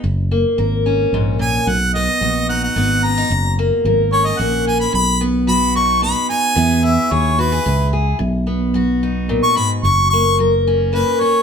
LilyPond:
<<
  \new Staff \with { instrumentName = "Harmonica" } { \time 3/4 \key b \major \tempo 4 = 110 r2 r8 gis''8 | fis''8 dis''4 fis''16 fis''8. ais''8~ | ais''8 r4 cis''16 dis''16 fis''8 gis''16 b''16 | b''8 r8 b''8 cis'''8 b''8 gis''8~ |
gis''8 e''8 cis''8 b'4 r8 | r2 r16 cis'''16 b''16 r16 | cis'''8 cis'''8 r4 b'8 cis''8 | }
  \new Staff \with { instrumentName = "Steel-string acoustic guitar" } { \time 3/4 \key b \major << { r8 ais8 ais'8 cis'4. | r8 b8 fis'8 dis'8 b8 cis'16 dis'16 | r8 ais8 ais'8 cis'8 ais8 cis'8 | r8 b8 fis'8 dis'8 b8 dis'8 |
<b e' gis'>8 e'8 gis'8 fis'16 gis'16 e'8 gis'8 | r8 b8 fis'8 dis'4. | r8 ais8 ais'8 cis'8 ais8 cis'8 | } \\ { fis,4 fis4 gis,8 ais,8 | b,4 fis4 fis,4 | fis,4 fis4 cis4 | b,4 fis4 fis,4 |
e4 b4 b,4 | b,4 fis4 ais,8 gis,8 | fis,4 fis4 cis4 | } >> }
  \new Staff \with { instrumentName = "Fingered electric bass" } { \clef bass \time 3/4 \key b \major fis,,4 gis,,4 ais,,4 | b,,4 ais,,4 gis,,4 | fis,,4 gis,,4 ais,,4 | b,,2. |
e,4 dis,4 cis,4 | b,,2. | fis,,2. | }
>>